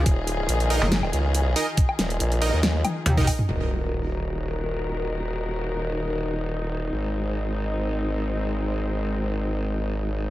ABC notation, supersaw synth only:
X:1
M:4/4
L:1/16
Q:"Swing 16ths" 1/4=140
K:Ebm
V:1 name="Supersaw synth"
z6 [EBe] z6 z [EBe] z | z6 [EBe] z6 [EBe] z2 | z16 | z16 |
z16 | z16 |]